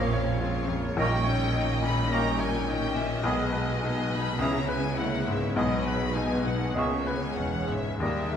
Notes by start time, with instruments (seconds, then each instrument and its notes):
Already playing: grand piano A#1 F2 A#3 F4 C#5, double bass section A#1, cello section A#2, french horn section F3 C#4, viola section A#3 C#4, violin section G4 C#5 F5, flute section C#6
0.13 grand piano C#5
0.40 viola section G#3 C4, grand piano F4, violin section F4 C#5
0.68 grand piano F2, viola section A#3
0.97 grand piano A#1, double bass section A#1, cello section A#2, bassoon D#3, french horn section D#3 C#4, viola section G3 A#3, clarinet A#3, violin section D#4 D#5 G5, oboe A#4, flute section C#6
1.24 viola section C#4, grand piano C#5
1.53 viola section A#3 D#4, grand piano D#4
1.57 violin section D#5
1.81 grand piano A#2, violin section B5
1.86 viola section G#3
2.09 viola section G3, grand piano A#3, clarinet A#3, oboe A#4, violin section A#5, flute section C#6
2.13 bassoon D#3, violin section G5
2.39 grand piano C#5, violin section G#5
2.68 viola section A#3 C#4, grand piano D#4, violin section G4 D#5 G5
2.95 grand piano A#2, violin section E5
3.23 grand piano B1, double bass section B1, cello section B2, bassoon D#3, viola section G#3 B3, french horn section G#3 B3, clarinet B3, oboe G#4, violin section G#4 D#5, flute section B5
3.53 viola section G#3, grand piano B4
3.83 viola section B3, grand piano D#4, violin section D#5
4.10 grand piano B2, viola section D#4, violin section B5
4.38 grand piano C#2, double bass section C#2, cello section C#3, bassoon E3, viola section C#4, clarinet C#4, violin section E4 E5 A#5, oboe G#4, flute section B5
4.68 grand piano B4, violin section G#5
4.97 viola section A#3 C#4, grand piano E4, violin section C#5 F#5
5.27 grand piano G#2, violin section E5
5.55 grand piano B1, double bass section B1, cello section B2, bassoon G#3, viola section G#3 D#4, clarinet B3, oboe G#4, violin section B4 D#5, flute section B5
5.86 grand piano B4, violin section B5
6.15 viola section B3, grand piano D#4, violin section G#4 G#5
6.46 grand piano B2, violin section F#5
6.74 grand piano C#2, double bass section C#2, cello section C#3, bassoon G#3, viola section A#3 C#4, clarinet B3, oboe G#4, violin section C#5, flute section C#6
6.78 violin section E5
7.07 grand piano B4, violin section G#5
7.37 double bass section E1, cello section E2, viola section G#3 C#4, grand piano C#4, violin section F#5
7.68 grand piano G#2, violin section E5
8.00 grand piano D#2, cello section D#2, double bass section D#2, timpani D#3, viola section G3 D#4, bassoon G3, french horn section A#3, clarinet A#3, violin section G4 A#4 E5, oboe A#4, flute section D#6
8.09 timpani D#3
8.16 timpani D#3
8.25 timpani D#3
8.32 timpani D#3, grand piano A#4